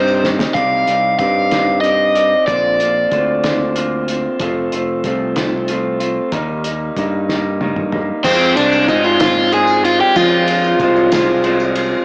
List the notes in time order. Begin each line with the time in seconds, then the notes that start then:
Already playing: G2 C3 G3 C4 D#4 C5
0.08 tambourine
0.24 snare
0.39 snare
0.54 C2 C3 G3 C4 D#4 G4 D5 F5, kick, closed hi-hat
0.87 C2 C4 D#4 G4 D5, closed hi-hat
1.19 G2 C4 D#4 G4 D5 F5, kick, closed hi-hat
1.51 C4 D#4 G4 D5, snare, closed hi-hat
1.81 C4 D#4 G4 D#5, closed hi-hat
1.86 D5
2.15 C4 D#4 G4 D5, closed hi-hat
2.47 A#1 A#2 D3 A#3 C4 F4 D5, kick, closed hi-hat
2.80 A#3 C4 F4, closed hi-hat
3.11 D2 D3 A#3 C4 F4, kick, closed hi-hat
3.43 A#3 C4 F4, snare, closed hi-hat
3.75 D3 A#3 C4 F4, closed hi-hat
4.08 A#3 C4 F4, closed hi-hat
4.39 F1 F3 A3 C4 F4, kick, closed hi-hat
4.72 F1 A3 C4 F4, closed hi-hat
5.04 C2 F3 A3 C4 F4, kick, closed hi-hat
5.36 A3 C4 F4, snare, closed hi-hat
5.68 F3 A3 C4 F4, closed hi-hat
6.00 A3 C4 F4, closed hi-hat
6.32 D#2 D#3 G3 A#3 D#4, kick, closed hi-hat
6.64 G3 A#3 D#4, closed hi-hat
6.96 G2 D#3 G3 A#3 D#4, kick, closed hi-hat
7.29 G3 A#3 D#4, snare
7.61 D#3 G3 A#3 D#4, high tom
7.76 mid tom
7.92 G3 A#3 D#4, mid tom
8.24 F2 F3 G#3 C4 F4 G#4 C5 G#5, kick, crash, tambourine
8.56 C2 G#3 C4 D4 F4, ride, tambourine
8.73 tambourine
8.88 G#2 F3 G#3 C4 D#4 F4, kick, ride, tambourine
9.04 F4, tambourine
9.20 F3 G#3 C4 F4, snare, ride, tambourine
9.52 F3 G#3 C4 F4 G#4, ride, tambourine
9.67 tambourine
9.84 F4, ride, tambourine
10.01 G4
10.16 F3 G#3 C4 F4 A#5, kick, ride, tambourine
10.48 G#3 C4 F4, ride, tambourine
10.64 tambourine
10.80 C2 F3 G#3 C4 F4, kick, ride, tambourine
10.96 tambourine
11.12 F3 G#3 C4 F4, snare, ride, tambourine
11.44 F3 G#3 C4 F4, ride, tambourine
11.60 tambourine
11.75 ride, tambourine